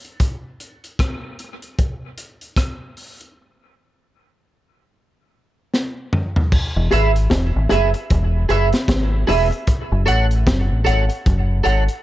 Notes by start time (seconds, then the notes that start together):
0.05 closed hi-hat
0.20 kick, closed hi-hat
0.60 closed hi-hat
0.84 closed hi-hat
0.99 kick, cross-stick, closed hi-hat
1.39 closed hi-hat
1.62 closed hi-hat
1.79 kick, closed hi-hat
2.18 closed hi-hat
2.41 closed hi-hat
2.56 kick, cross-stick, closed hi-hat
2.97 open hi-hat
3.21 closed hi-hat
5.74 snare
6.13 mid tom
6.36 floor tom
6.52 kick, crash
6.77 E1
6.91 G#1 G#4 B4 E5, closed hi-hat, high bongo
7.16 closed hi-hat
7.30 E1, kick, snare, closed hi-hat, high bongo
7.56 G#1
7.69 F#1 G#4 B4 E5, closed hi-hat, high bongo, low bongo
7.94 muted clean electric guitar stroke, closed hi-hat
8.10 E1, kick, closed hi-hat
8.49 F#1 G#4 B4 E5, closed hi-hat
8.73 snare, closed hi-hat
8.88 G#1, kick, snare, closed hi-hat, high bongo
9.27 E1 G#4 B4 E5, open hi-hat, high bongo, low bongo
9.51 muted clean electric guitar stroke, closed hi-hat
9.67 kick, closed hi-hat
9.92 F#1
10.06 A1 A4 C#5 F#5, closed hi-hat
10.31 closed hi-hat
10.47 F#1, kick, snare, closed hi-hat
10.71 A1
10.85 G#1 A4 C#5 F#5, closed hi-hat
11.09 muted clean electric guitar stroke, closed hi-hat
11.26 F#1, kick, closed hi-hat
11.64 G#1 A4 C#5 F#5, closed hi-hat
11.88 closed hi-hat